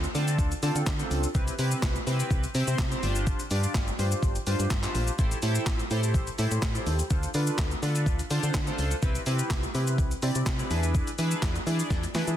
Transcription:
0.04 closed hi-hat, shaker
0.14 fm bass D3, analog polysynth C4 D4 F4 A4, open hi-hat, shaker
0.28 closed hi-hat, shaker
0.39 fm bass D2, kick, closed hi-hat, shaker
0.52 closed hi-hat, shaker
0.62 fm bass D3, analog polysynth C4 D4 F4 A4, open hi-hat, shaker
0.75 fm bass D3, closed hi-hat, shaker
0.87 fm bass D3, kick, snare, clap, closed hi-hat, shaker
0.99 analog polysynth C4 D4 F4 A4, closed hi-hat, shaker
1.11 fm bass C#2, open hi-hat, shaker
1.24 closed hi-hat, shaker
1.35 fm bass C2, analog polysynth C4 E4 G4 B4, kick, closed hi-hat, shaker
1.48 closed hi-hat, shaker
1.59 fm bass C3, analog polysynth C4 E4 G4 B4, open hi-hat, shaker
1.72 closed hi-hat, shaker
1.82 fm bass C2, kick, snare, clap, closed hi-hat, shaker
1.96 closed hi-hat, shaker
2.06 fm bass C3, analog polysynth C4 E4 G4 B4, open hi-hat, shaker
2.20 closed hi-hat, shaker
2.31 fm bass C2, kick, closed hi-hat, shaker
2.44 closed hi-hat, shaker
2.54 fm bass C3, analog polysynth C4 E4 G4 C5, open hi-hat, shaker
2.67 fm bass C3, closed hi-hat, shaker
2.79 fm bass C3, kick, snare, clap, closed hi-hat, shaker
2.91 analog polysynth C4 E4 G4 C5, closed hi-hat, shaker
3.03 fm bass G1, analog polysynth D4 F4 G4 C5, open hi-hat, shaker
3.16 closed hi-hat, shaker
3.27 kick, closed hi-hat, shaker
3.40 closed hi-hat, shaker
3.51 fm bass G2, analog polysynth D4 F4 G4 D5, open hi-hat, shaker
3.64 closed hi-hat, shaker
3.74 fm bass G1, kick, snare, clap, closed hi-hat, shaker
3.88 closed hi-hat, shaker
3.98 fm bass G2, analog polysynth D4 F4 G4 C5, open hi-hat, shaker
4.12 closed hi-hat, shaker
4.23 fm bass G1, kick, closed hi-hat, shaker
4.36 closed hi-hat, shaker
4.47 fm bass G2, analog polysynth D4 F4 G4 C5, open hi-hat, shaker
4.59 fm bass G2, closed hi-hat, shaker
4.70 fm bass G2, kick, snare, clap, closed hi-hat, shaker
4.83 analog polysynth D4 F4 G4 C5, clap, closed hi-hat, shaker
4.95 fm bass A#1, open hi-hat, shaker
5.07 closed hi-hat, shaker
5.18 fm bass A1, analog polysynth E4 G4 A4 C5, kick, closed hi-hat, shaker
5.31 closed hi-hat, shaker
5.42 fm bass A2, analog polysynth E4 G4 A4 C5, open hi-hat, shaker
5.55 closed hi-hat, shaker
5.66 fm bass A1, kick, snare, clap, closed hi-hat, shaker
5.79 closed hi-hat, shaker
5.90 fm bass A2, analog polysynth E4 G4 A4 C5, open hi-hat, shaker
6.03 closed hi-hat, shaker
6.14 fm bass A1, kick, closed hi-hat, shaker
6.27 closed hi-hat, shaker
6.38 fm bass A2, analog polysynth E4 G4 A4 C5, open hi-hat, shaker
6.51 fm bass A2, closed hi-hat, shaker
6.62 fm bass A2, kick, snare, clap, closed hi-hat, shaker
6.75 analog polysynth E4 G4 A4 C5, closed hi-hat, shaker
6.86 fm bass D#2, open hi-hat, shaker
6.99 closed hi-hat, shaker
7.10 fm bass D2, analog polysynth D4 F4 A4 C5, kick, closed hi-hat, shaker
7.23 closed hi-hat, shaker
7.34 fm bass D3, analog polysynth D4 F4 A4 B4, open hi-hat, shaker
7.47 closed hi-hat, shaker
7.58 fm bass D2, kick, snare, clap, closed hi-hat, shaker
7.71 closed hi-hat, shaker
7.82 fm bass D3, analog polysynth D4 F4 A4 B4, open hi-hat, shaker
7.95 closed hi-hat, shaker
8.06 fm bass D2, kick, closed hi-hat, shaker
8.19 closed hi-hat, shaker
8.30 fm bass D3, analog polysynth D4 F4 A4 C5, open hi-hat, shaker
8.43 fm bass D3, closed hi-hat, shaker
8.54 fm bass D3, kick, snare, clap, closed hi-hat, shaker
8.67 analog polysynth D4 F4 A4 C5, closed hi-hat, shaker
8.78 fm bass C#2, open hi-hat, shaker
8.91 closed hi-hat, shaker
9.02 fm bass C2, analog polysynth C4 E4 G4 B4, kick, closed hi-hat, shaker
9.15 closed hi-hat, shaker
9.26 fm bass C3, analog polysynth C4 E4 G4 B4, open hi-hat, shaker
9.39 closed hi-hat, shaker
9.50 fm bass C2, kick, snare, clap, closed hi-hat, shaker
9.63 closed hi-hat, shaker
9.74 fm bass C3, analog polysynth C4 E4 G4 B4, open hi-hat, shaker
9.88 closed hi-hat, shaker
9.98 fm bass C2, kick, closed hi-hat, shaker
10.11 closed hi-hat, shaker
10.22 fm bass C3, analog polysynth C4 E4 G4 D5, open hi-hat, shaker
10.35 fm bass C3, closed hi-hat, shaker
10.46 fm bass C3, kick, snare, clap, closed hi-hat, shaker
10.59 analog polysynth C4 E4 G4 B4, closed hi-hat, shaker
10.70 fm bass E2, analog polysynth D4 E4 G#4 B4, open hi-hat, shaker
10.83 closed hi-hat, shaker
10.95 kick, closed hi-hat, shaker
11.07 closed hi-hat, shaker
11.18 fm bass E3, analog polysynth D4 E4 G#4 B4, open hi-hat, shaker
11.31 closed hi-hat, shaker
11.42 fm bass E2, kick, snare, clap, closed hi-hat, shaker
11.55 closed hi-hat, shaker
11.66 fm bass E3, analog polysynth D4 E4 G#4 D5, open hi-hat, shaker
11.80 closed hi-hat, shaker
11.90 fm bass E2, kick, snare, closed hi-hat, shaker
12.03 closed hi-hat, shaker
12.14 fm bass E3, analog polysynth D4 E4 G#4 B4, snare, open hi-hat, shaker
12.28 fm bass E3, closed hi-hat, shaker

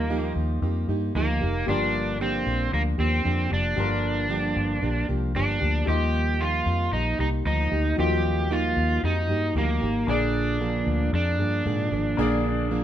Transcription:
Already playing: fingered electric bass D#2, grand piano G3 F4 D#5, electric slide guitar A#3, steel-string acoustic guitar G4
0.09 steel-string acoustic guitar D#3 F3 A#3 D#4 G4
0.36 fingered electric bass D#2
0.62 fingered electric bass F2, steel-string acoustic guitar F3 A#3 D#4 G4
0.88 fingered electric bass G2, steel-string acoustic guitar A#3 D#4 G4
1.15 fingered electric bass D2, steel-string acoustic guitar D#3 F3 A#3 D#4 G4
1.41 fingered electric bass F1, steel-string acoustic guitar A#3 D#4 G4
1.67 fingered electric bass G1, steel-string acoustic guitar G2 D3 F3 A#3 D4 G4, grand piano G3 F4
1.71 grand piano A#4
2.20 steel-string acoustic guitar G2 D3 F3 A#3 D4 G4, electric slide guitar C4
2.46 fingered electric bass A#1
2.72 fingered electric bass D2, steel-string acoustic guitar F3 A#3 D4 G4
2.98 fingered electric bass D#2, steel-string acoustic guitar F3 A#3 D4 G4, electric slide guitar C4
3.24 fingered electric bass F2, steel-string acoustic guitar G2 D3 F3 A#3 D4 G4
3.50 fingered electric bass F1, steel-string acoustic guitar F3 A#3 D4 G4
3.76 fingered electric bass G1, steel-string acoustic guitar G2 D3 F3 A#3 D4 G4, grand piano G3 F4 A#4
4.29 steel-string acoustic guitar G2 D3 F3 A#3 D4 G4
4.57 fingered electric bass G1
4.81 fingered electric bass A#1, steel-string acoustic guitar F3 A#3 D4 G4
5.08 fingered electric bass C2, steel-string acoustic guitar F3 A#3 D4 G4
5.35 fingered electric bass G1, steel-string acoustic guitar G2 D3 F3 A#3 D4 G4
5.61 fingered electric bass D2, steel-string acoustic guitar F3 A#3 D4 G4
5.86 fingered electric bass D#2, steel-string acoustic guitar D#3 F3 A#3 D#4 G4, grand piano G3 F4
5.90 grand piano D#5
6.40 steel-string acoustic guitar D#3 F3 A#3 D#4 G4, electric slide guitar F4
6.66 fingered electric bass F2
6.92 fingered electric bass A#1, steel-string acoustic guitar F3 A#3 D#4 G4
7.19 fingered electric bass C2, steel-string acoustic guitar A#3 D#4 G4
7.45 fingered electric bass D2, steel-string acoustic guitar D#3 F3 A#3 D#4 G4
7.71 fingered electric bass D2, steel-string acoustic guitar A#3 D#4 G4
7.96 fingered electric bass D#2, steel-string acoustic guitar D#3 F3 A#3 D#4 G4, grand piano F#3 F4 D#5
8.03 grand piano G3
8.50 steel-string acoustic guitar D#3 F3 A#3 D#4 G4, electric slide guitar F4
8.77 fingered electric bass D#2
9.03 fingered electric bass F2, steel-string acoustic guitar F3 A#3 D#4 G4
9.29 fingered electric bass G2, steel-string acoustic guitar A#3 D#4 G4
9.55 fingered electric bass D2, steel-string acoustic guitar D#3 F3 A#3 D#4 G4
9.81 fingered electric bass G#1, steel-string acoustic guitar A#3 D#4 G4
10.07 fingered electric bass A#1, steel-string acoustic guitar A#2 D3 F3 A#3 D4 G#4, grand piano A#3 G#4 D5
10.61 steel-string acoustic guitar A#2 D3 F3 A#3 D4 G#4
10.87 fingered electric bass D2
11.12 fingered electric bass F2, steel-string acoustic guitar F3 A#3 D4 G#4
11.39 fingered electric bass G2, steel-string acoustic guitar F3 A#3 D4 G#4
11.65 fingered electric bass G#2, steel-string acoustic guitar A#2 D3 F3 A#3 D4 G#4
11.92 fingered electric bass G#1, steel-string acoustic guitar F3 A#3 D4 G#4
12.17 fingered electric bass A#1, steel-string acoustic guitar A#2 D3 F3 A#3 D4 G#4, grand piano A#3 G#4 D5
12.70 steel-string acoustic guitar A#2 D3 F3 A#3 D4 G#4

